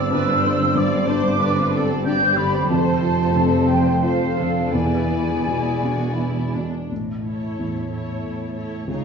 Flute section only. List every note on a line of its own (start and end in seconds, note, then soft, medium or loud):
0.00 0.75 E6 medium
0.76 1.82 D6 loud
2.05 2.37 G6 loud
2.38 2.70 B5 medium
2.70 3.68 A5 medium
3.68 4.02 G5 medium
4.03 4.74 F5 medium
4.73 6.55 G#5 medium